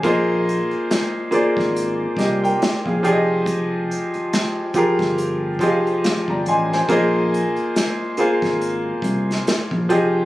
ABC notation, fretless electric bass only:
X:1
M:4/4
L:1/16
Q:"Swing 16ths" 1/4=70
K:Bbmix
V:1 name="Fretless electric bass" clef=bass
B,,,3 z4 A,,,3 C,,2 z B,,, F,,,2- | F,,,3 z4 G,,,3 F,,,2 z G,,, =A,,,2 | B,,,3 z4 A,,,3 C,,2 z B,,, F,,,2 |]